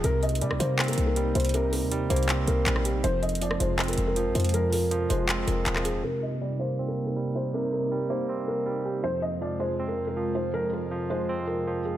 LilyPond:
<<
  \new Staff \with { instrumentName = "Felt piano" } { \time 4/4 \key c \minor \tempo 4 = 160 bes'8 ees''8 d''8 c''8. bes'8 bes'8. c''8 | bes'8 bes'4 c''4 bes'4 g'8 | c''8 ees''8 d''8 c''8. bes'8 bes'8. c''8 | bes'8 bes'4 c''4 bes'4 aes'8 |
bes'8 ees''8 d''8 c''8. bes'8 bes'8. c''8 | bes'8 bes'4 c''4 bes'4 g'8 | c''8 ees''8 d''8 c''8. bes'8 bes'8. c''8 | bes'8 bes'4 c''4 bes'4 aes'8 | }
  \new Staff \with { instrumentName = "Analog synth pad" } { \time 4/4 \key c \minor << { <bes ees'>1~ | <bes ees'>1 | <aes f'>1~ | <aes f'>1 |
<bes ees'>1~ | <bes ees'>1 | <aes f'>1~ | <aes f'>1 | } \\ { c1~ | c1~ | c1~ | c1 |
c1~ | c1~ | c1~ | c1 | } >> }
  \new Staff \with { instrumentName = "Tine electric piano" } { \clef bass \time 4/4 \key c \minor c4 g8 bes8 c'4 g4 | c4 g8 bes8 c'4 g4 | f,4 f8 aes8 c'4 f4 | f,4 f8 aes8 c'4 f4 |
c4 g8 bes8 c'4 g4 | c4 g8 bes8 c'4 g4 | f,4 f8 aes8 c'4 f4 | f,4 f8 aes8 c'4 f4 | }
  \new Staff \with { instrumentName = "808-style bass" } { \clef bass \time 4/4 \key c \minor c,4 c16 c,16 c4 c,4 c,8~ | c,8. ees,8. c,4 c,8 bes,,4 | f,,4. f,,4 f,,8. aes,,16 f,8~ | f,4. f,,4 f,,8 ees,,4 |
r1 | r1 | r1 | r1 | }
  \new DrumStaff \with { instrumentName = "Drums" } \drummode { \time 4/4 \tuplet 3/2 { hh16 r16 r16 hh16 hh16 hh16 } hh16 ss16 hh8 <hc hh ss>32 hh32 hh32 hh32 hh8 hh8 hh32 hh32 hh32 hh32 | hh8 hho8 \tuplet 3/2 { hh16 r16 r16 hh16 hh16 hh16 } <hc hh>8 hh8 <hc hh>16 ss16 hh8 | \tuplet 3/2 { hh16 r16 r16 hh16 hh16 hh16 } hh16 ss16 hh8 <hc hh ss>32 hh32 hh32 hh32 hh8 hh8 hh32 hh32 hh32 hh32 | hh8 hho8 hh8 hh8 <hc hh>8 hh8 <hc hh>16 <hc ss>16 hh8 |
r4 r4 r4 r4 | r4 r4 r4 r4 | r4 r4 r4 r4 | r4 r4 r4 r4 | }
>>